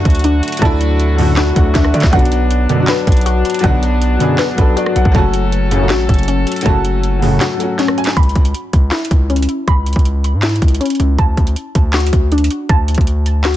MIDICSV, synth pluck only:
0, 0, Header, 1, 2, 480
1, 0, Start_track
1, 0, Tempo, 377358
1, 787, Time_signature, 4, 2, 24, 8
1, 17257, End_track
2, 0, Start_track
2, 0, Title_t, "Synth pluck"
2, 0, Program_c, 0, 84
2, 0, Note_on_c, 0, 66, 96
2, 0, Note_on_c, 0, 81, 115
2, 310, Note_on_c, 0, 62, 93
2, 770, Note_off_c, 0, 81, 0
2, 786, Note_on_c, 0, 81, 117
2, 1730, Note_off_c, 0, 66, 0
2, 1746, Note_on_c, 0, 66, 104
2, 2212, Note_off_c, 0, 62, 0
2, 2227, Note_on_c, 0, 62, 86
2, 2707, Note_off_c, 0, 62, 0
2, 2707, Note_off_c, 0, 66, 0
2, 2707, Note_off_c, 0, 81, 0
2, 2709, Note_on_c, 0, 78, 112
2, 3669, Note_on_c, 0, 71, 101
2, 4145, Note_on_c, 0, 66, 92
2, 4614, Note_off_c, 0, 78, 0
2, 4629, Note_on_c, 0, 78, 103
2, 5567, Note_off_c, 0, 71, 0
2, 5583, Note_on_c, 0, 71, 95
2, 6047, Note_off_c, 0, 66, 0
2, 6063, Note_on_c, 0, 66, 88
2, 6545, Note_off_c, 0, 66, 0
2, 6545, Note_off_c, 0, 71, 0
2, 6548, Note_off_c, 0, 78, 0
2, 6548, Note_on_c, 0, 81, 107
2, 7506, Note_on_c, 0, 66, 103
2, 7988, Note_on_c, 0, 61, 84
2, 8452, Note_off_c, 0, 81, 0
2, 8467, Note_on_c, 0, 81, 115
2, 9412, Note_off_c, 0, 66, 0
2, 9427, Note_on_c, 0, 66, 92
2, 9891, Note_off_c, 0, 61, 0
2, 9906, Note_on_c, 0, 61, 91
2, 10387, Note_off_c, 0, 61, 0
2, 10387, Note_off_c, 0, 66, 0
2, 10387, Note_off_c, 0, 81, 0
2, 10388, Note_on_c, 0, 83, 103
2, 11340, Note_on_c, 0, 64, 105
2, 11828, Note_on_c, 0, 61, 83
2, 12294, Note_off_c, 0, 83, 0
2, 12309, Note_on_c, 0, 83, 113
2, 13253, Note_off_c, 0, 64, 0
2, 13268, Note_on_c, 0, 64, 100
2, 13730, Note_off_c, 0, 61, 0
2, 13745, Note_on_c, 0, 61, 88
2, 14226, Note_off_c, 0, 61, 0
2, 14228, Note_off_c, 0, 64, 0
2, 14228, Note_off_c, 0, 83, 0
2, 14228, Note_on_c, 0, 81, 111
2, 15190, Note_on_c, 0, 66, 100
2, 15673, Note_on_c, 0, 62, 92
2, 16132, Note_off_c, 0, 81, 0
2, 16147, Note_on_c, 0, 81, 118
2, 17091, Note_off_c, 0, 66, 0
2, 17106, Note_on_c, 0, 66, 105
2, 17257, Note_off_c, 0, 62, 0
2, 17257, Note_off_c, 0, 66, 0
2, 17257, Note_off_c, 0, 81, 0
2, 17257, End_track
0, 0, End_of_file